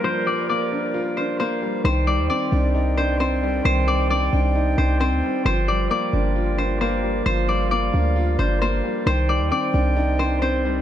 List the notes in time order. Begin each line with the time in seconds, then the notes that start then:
Already playing: G2 F3 G3 A#3 D4 F4 A#4 D5
0.04 F3 C5
0.26 G3 D5
0.49 A#3 D5
0.72 D4
0.94 F4
1.17 D4 C5
1.40 A#3 C5
1.62 G3
1.85 C2 D#3 C5 D5 G5
2.07 G3 D5
2.18 D#2
2.30 C4 D5
2.52 C2 D4
2.74 D#4
2.97 D4 C5
3.20 C4 C5
3.43 G3
3.65 C2 D#3 C5
3.88 G3 D5
4.10 C4 D5
4.33 C2 D4
4.55 D#4
4.78 C2 D4 C5
5.00 C4 C5
5.12 D2
5.24 G3
5.45 G1 F3 F4 A#4 C5
5.68 G3 D5
5.90 A#3 D5
6.13 G1 D4
6.36 F4
6.58 D4 C5
6.81 A#3 C5
7.03 G3
7.26 G1 F3 C5 F5
7.48 G3 D5
7.71 A#3 D5
7.93 D2 D4
8.16 F4
8.39 G1 D4 C5
8.62 A#3 C5
8.84 G3
9.06 C2 D#3 C5 G5
9.29 G3 D5
9.40 D#2
9.51 C4 D5
9.74 C2 D4
9.96 D#4
10.19 D4 C5
10.42 C4 C5
10.65 G3